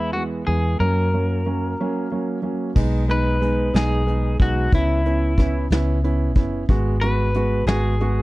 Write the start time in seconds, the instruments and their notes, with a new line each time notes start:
Already playing: fingered electric bass E2, clean electric guitar E4
0.13 felt piano E3 G#3 B3, clean electric guitar F#4
0.47 fingered electric bass E2, felt piano E3 G#3 B3, clean electric guitar G#4
0.80 fingered electric bass F#2, felt piano F#3 A#3 C#4, clean electric guitar A#4
1.13 felt piano F#3 A#3 C#4
1.46 felt piano F#3 A#3 C#4
1.80 felt piano F#3 A#3 C#4
2.11 felt piano F#3 A#3 C#4
2.42 felt piano F#3 A#3 C#4
2.75 fingered electric bass B1, felt piano G#3 B3 D#4, kick, crash
3.08 felt piano G#3 B3 D#4, clean electric guitar B4, closed hi-hat
3.41 felt piano G#3 B3 D#4, closed hi-hat
3.74 fingered electric bass B1, felt piano G#3 B3 D#4, clean electric guitar G#4, snare, closed hi-hat
4.06 felt piano G#3 B3 D#4, closed hi-hat
4.39 fingered electric bass B1, felt piano G#3 B3 D#4, clean electric guitar F#4, kick, closed hi-hat
4.72 fingered electric bass C#2, felt piano B3 C#4 E4, clean electric guitar E4, kick, closed hi-hat
5.06 felt piano B3 C#4 E4, closed hi-hat
5.38 felt piano B3 C#4 E4, kick, snare, closed hi-hat
5.70 fingered electric bass C#2, felt piano B3 C#4 E4, snare, closed hi-hat
6.04 felt piano B3 C#4 E4, closed hi-hat
6.35 fingered electric bass F#1, felt piano B3 C#4 E4, kick, closed hi-hat
6.69 fingered electric bass G#1, felt piano G#3 B3 F#4, kick, closed hi-hat
7.01 felt piano G#3 B3 F#4, clean electric guitar B4, closed hi-hat
7.34 felt piano G#3 B3 F#4, closed hi-hat
7.66 fingered electric bass G#1, felt piano G#3 B3 F#4, clean electric guitar G#4, snare, closed hi-hat
8.00 felt piano G#3 B3 F#4, closed hi-hat